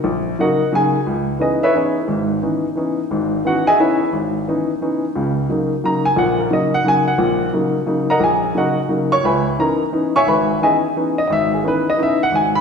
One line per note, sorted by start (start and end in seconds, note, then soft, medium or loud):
0.04 0.33 A#1 medium
0.38 0.61 C#3 medium
0.38 0.61 F#3 medium
0.38 0.61 A#3 soft
0.38 0.61 D#4 medium
0.38 0.71 F#4 medium
0.38 0.71 A#4 medium
0.38 0.71 D#5 medium
0.38 0.71 F#5 medium
0.72 0.95 C#3 medium
0.72 0.95 F#3 medium
0.72 0.95 A#3 medium
0.72 0.95 D#4 medium
0.72 1.00 G#4 medium
0.72 0.99 G#5 medium
1.07 1.35 C#2 medium
1.39 1.62 E3 medium
1.39 1.62 B3 medium
1.39 1.63 C#4 soft
1.39 1.63 D#4 medium
1.39 1.62 G#4 medium
1.39 1.62 B4 medium
1.39 1.62 D#5 medium
1.63 1.75 E4 medium
1.63 1.74 B4 medium
1.63 1.74 C#5 medium
1.63 1.74 E5 medium
1.74 1.97 E3 medium
1.74 1.97 B3 soft
1.74 1.97 C#4 medium
1.74 1.97 D#4 medium
1.74 2.07 E4 soft
1.74 2.07 G#4 soft
1.74 2.06 C#5 medium
2.08 2.37 G#1 medium
2.08 2.37 G#2 medium
2.42 2.65 E3 medium
2.42 2.65 B3 soft
2.42 2.65 C#4 soft
2.42 2.65 D#4 medium
2.76 2.99 E3 medium
2.76 2.99 B3 soft
2.76 2.99 C#4 medium
2.76 2.99 D#4 medium
3.11 3.40 G#1 medium
3.11 3.40 G#2 medium
3.44 3.67 E3 medium
3.44 3.67 B3 medium
3.44 3.67 C#4 medium
3.44 3.68 D#4 medium
3.44 3.67 F#4 medium
3.44 3.67 F#5 medium
3.67 3.78 G#4 medium
3.67 3.78 D#5 medium
3.67 3.78 E5 medium
3.67 3.78 G#5 loud
3.79 4.01 E3 medium
3.79 4.01 B3 soft
3.79 4.02 C#4 medium
3.79 4.01 D#4 medium
3.79 4.11 E4 medium
3.79 4.11 B4 medium
3.79 4.11 C#5 medium
3.79 4.11 E5 medium
4.13 4.42 G#1 medium
4.47 4.70 E3 medium
4.47 4.70 B3 medium
4.47 4.70 C#4 soft
4.47 4.70 D#4 medium
4.81 5.04 E3 medium
4.81 5.04 B3 medium
4.81 5.04 C#4 soft
4.81 5.04 D#4 medium
5.15 5.44 C#2 medium
5.15 5.44 C#3 medium
5.49 5.72 C#3 medium
5.49 5.72 F#3 soft
5.49 5.72 A#3 medium
5.49 5.72 D#4 medium
5.84 6.06 C#3 medium
5.84 6.06 F#3 soft
5.84 6.06 A#3 soft
5.84 6.07 D#4 medium
5.84 6.05 A#5 medium
6.05 6.17 G#5 medium
6.16 6.46 A#1 medium
6.16 6.46 A#2 medium
6.16 6.39 F#5 medium
6.39 6.50 A#4 medium
6.50 6.74 C#3 medium
6.50 6.74 F#3 medium
6.50 6.74 A#3 soft
6.50 6.74 D#4 medium
6.50 6.73 D#5 medium
6.74 6.85 F#5 medium
6.84 7.08 C#3 medium
6.84 7.08 F#3 soft
6.84 7.08 A#3 soft
6.84 7.08 D#4 medium
6.84 7.08 G#5 loud
7.08 7.50 F#5 medium
7.18 7.48 A#1 medium
7.18 7.48 A#2 medium
7.52 7.76 C#3 medium
7.52 7.76 F#3 medium
7.52 7.76 A#3 medium
7.52 7.76 D#4 medium
7.86 8.10 C#3 medium
7.86 8.10 F#3 medium
7.86 8.10 A#3 medium
7.86 8.10 D#4 medium
8.10 8.22 A#4 medium
8.10 8.22 D#5 medium
8.10 8.22 F#5 medium
8.10 8.21 A#5 medium
8.20 8.50 A#1 medium
8.20 8.54 G#5 medium
8.24 8.54 G#4 medium
8.55 8.78 C#3 medium
8.55 8.78 F#3 medium
8.55 8.78 A#3 soft
8.55 8.78 D#4 medium
8.55 8.78 F#4 medium
8.55 8.78 A#4 medium
8.55 8.78 D#5 medium
8.55 8.78 F#5 medium
8.89 9.12 C#3 soft
8.89 9.12 F#3 medium
8.89 9.13 A#3 medium
8.89 9.12 D#4 medium
9.12 9.24 C#5 medium
9.12 9.24 C#6 loud
9.23 9.53 C#2 medium
9.23 9.56 B4 medium
9.23 9.56 E5 medium
9.23 9.57 G#5 medium
9.23 9.56 B5 medium
9.59 9.81 E3 medium
9.59 9.81 B3 medium
9.59 9.81 C#4 medium
9.59 9.81 D#4 medium
9.59 9.80 A#4 medium
9.59 9.80 A#5 medium
9.92 10.15 E3 medium
9.92 10.15 B3 medium
9.92 10.16 C#4 medium
9.92 10.15 D#4 medium
10.16 10.27 C#5 medium
10.16 10.27 E5 medium
10.16 10.27 G#5 medium
10.16 10.27 C#6 loud
10.27 10.56 G#1 medium
10.27 10.59 B4 medium
10.27 10.59 E5 medium
10.27 10.59 G#5 medium
10.27 10.59 B5 medium
10.61 10.84 E3 medium
10.61 10.84 B3 soft
10.61 10.84 C#4 soft
10.61 10.84 D#4 medium
10.61 10.76 G#4 medium
10.61 10.76 D#5 medium
10.61 10.75 E5 medium
10.61 10.75 G#5 medium
10.96 11.18 E3 medium
10.96 11.19 B3 medium
10.96 11.18 C#4 medium
10.96 11.19 D#4 medium
11.18 11.26 D#5 medium
11.27 11.59 G#1 medium
11.27 11.30 D#5 medium
11.33 11.52 E5 loud
11.54 11.64 G#4 medium
11.63 11.86 E3 medium
11.63 11.86 B3 medium
11.63 11.86 C#4 medium
11.63 11.87 D#4 medium
11.68 11.86 B4 medium
11.90 11.99 D#5 medium
11.98 12.20 E3 medium
11.98 12.20 B3 medium
11.98 12.21 C#4 medium
11.98 12.21 D#4 medium
12.03 12.21 E5 medium
12.23 12.33 F#5 medium
12.32 12.61 G#1 medium
12.32 12.54 G#5 medium
12.55 12.61 B5 loud